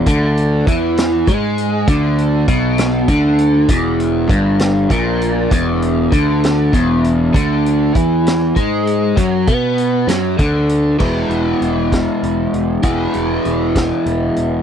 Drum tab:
CC |------|------|------|------|
HH |xxxxxx|xxxxxx|xxxxxx|xxxxxx|
SD |---o--|---o--|---o--|---o--|
BD |o-o-o-|o-o-o-|o-o-o-|o-o-o-|

CC |------|------|x-----|------|
HH |xxxxxx|xxxxxx|-xxxxx|xxxxxx|
SD |---o--|---o--|---o--|---o--|
BD |o-o-o-|oo--o-|o--o--|o--o--|